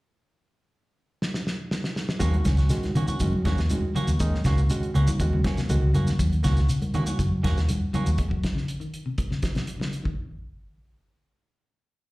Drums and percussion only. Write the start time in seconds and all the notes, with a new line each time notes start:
1.22 snare
1.34 snare
1.47 snare
1.71 snare
1.84 snare
1.96 snare
2.09 snare
2.20 kick, closed hi-hat, shekere
2.33 closed hi-hat, high conga
2.45 kick, snare, closed hi-hat, high conga, shekere
2.57 snare, shekere
2.69 snare, closed hi-hat, shekere
2.83 snare, closed hi-hat, high conga
2.95 closed hi-hat, low conga, shekere
3.08 high conga, shekere
3.20 kick, closed hi-hat, shekere
3.33 high conga
3.45 kick, snare, closed hi-hat, high conga
3.58 snare, shekere
3.70 closed hi-hat, high conga, shekere
3.95 closed hi-hat, low conga, shekere
4.08 closed hi-hat, shekere
4.20 kick, closed hi-hat, shekere
4.34 snare
4.44 kick, snare, closed hi-hat, high conga, shekere
4.58 shekere
4.70 closed hi-hat, shekere
4.83 closed hi-hat
4.95 closed hi-hat, low conga, shekere
5.07 high conga, shekere
5.20 kick, closed hi-hat, shekere
5.33 high conga
5.44 kick, snare, closed hi-hat, high conga
5.57 snare, closed hi-hat, shekere
5.69 closed hi-hat, high conga, shekere
5.94 closed hi-hat, high conga, low conga, shekere
6.07 snare, shekere
6.19 kick, closed hi-hat, shekere
6.33 closed hi-hat
6.44 kick, snare, closed hi-hat, high conga, shekere
6.57 snare, shekere
6.69 closed hi-hat, shekere
6.82 closed hi-hat, high conga
6.94 closed hi-hat, low conga, shekere
7.07 high conga, shekere
7.19 kick, closed hi-hat, shekere
7.44 kick, snare, closed hi-hat, high conga
7.57 snare, shekere
7.69 closed hi-hat, high conga, shekere
7.94 closed hi-hat, high conga, low conga, shekere
8.06 closed hi-hat, shekere
8.18 kick, closed hi-hat
8.31 kick
8.43 kick, snare, closed hi-hat
8.57 snare
8.68 closed hi-hat
8.81 closed hi-hat
8.94 closed hi-hat
9.18 kick, closed hi-hat
9.31 snare
9.42 kick, snare, closed hi-hat
9.55 snare, closed hi-hat
9.67 closed hi-hat
9.81 snare
9.93 closed hi-hat
10.05 kick